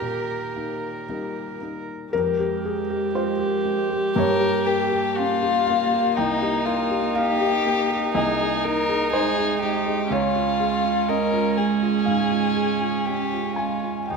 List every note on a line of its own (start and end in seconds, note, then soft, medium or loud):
0.00 0.53 A#2 soft
0.00 1.09 G3 soft
0.00 0.56 A#3 soft
0.00 0.56 D#4 soft
0.00 1.56 G4 medium
0.00 1.60 A#4 medium
0.00 1.88 A#4 medium
0.56 1.04 A#3 soft
0.56 1.04 D#4 soft
1.09 1.57 G3 soft
1.09 1.57 A#3 soft
1.09 1.58 D#4 soft
1.61 2.09 A#3 soft
1.61 2.09 D#4 soft
2.13 4.13 F2 medium
2.13 4.17 G#3 medium
2.13 6.12 G4 medium
2.13 3.11 A#4 loud
2.40 2.80 G4 medium
2.65 3.05 G#4 medium
2.90 3.30 G4 medium
3.15 3.55 F4 medium
3.15 4.12 C5 medium
3.39 3.80 G4 medium
3.65 4.05 G#3 medium
3.90 4.15 G4 medium
4.16 6.12 G2 medium
4.16 9.13 A#3 medium
4.16 4.68 A#4 medium
4.16 5.64 C#5 medium
4.40 4.81 G4 medium
4.66 5.19 G4 medium
4.66 5.07 A#4 medium
4.92 5.32 G4 medium
5.17 5.57 C#4 medium
5.17 6.18 F4 medium
5.43 5.82 G4 medium
5.67 6.07 A#3 medium
5.67 6.12 F5 medium
5.94 6.17 G4 medium
6.16 8.11 C2 medium
6.16 6.67 D#4 medium
6.16 10.07 D#4 medium
6.16 7.11 G5 medium
6.42 6.81 G4 medium
6.66 7.17 F4 medium
6.66 7.05 A#4 medium
6.91 7.30 G4 medium
7.15 7.55 D#4 medium
7.15 8.14 G4 medium
7.15 8.10 F5 medium
7.41 7.80 G4 medium
7.66 8.05 A#3 medium
7.91 8.14 G4 medium
8.15 10.07 C2 medium
8.15 8.65 G#4 medium
8.15 9.08 D#5 medium
8.40 8.78 G#4 medium
8.64 9.03 D#4 medium
8.64 9.12 A#4 medium
8.89 9.27 G#4 medium
9.11 14.12 G#3 medium
9.11 9.52 D#4 medium
9.11 9.60 G#4 medium
9.11 10.07 C5 medium
9.38 9.77 G#4 medium
9.62 10.01 G#3 medium
9.62 10.14 G4 medium
9.86 10.11 G#4 medium
10.10 12.02 C#2 medium
10.10 14.11 C#4 medium
10.10 11.10 F4 medium
10.10 11.05 C#5 loud
10.36 10.75 F4 medium
10.60 10.99 G#4 medium
10.85 11.23 F4 medium
11.09 11.47 C#4 medium
11.09 11.59 A#4 medium
11.09 12.02 D#5 medium
11.33 11.72 F4 medium
11.57 11.96 G#3 medium
11.57 13.07 G#4 medium
11.82 12.21 F4 medium
12.05 12.46 G#2 medium
12.05 13.53 F5 medium
12.32 12.71 F4 soft
12.55 12.96 G#4 soft
12.82 13.22 F4 soft
13.05 13.47 C#4 medium
13.05 13.56 G4 medium
13.33 13.73 F4 soft
13.56 13.99 G#3 soft
13.56 14.07 F4 soft
13.56 14.05 G#5 medium
13.84 14.09 F4 soft
14.08 14.17 D#2 soft
14.08 14.17 A#3 soft
14.08 14.17 D#4 soft
14.08 14.17 G4 medium
14.08 14.17 G5 medium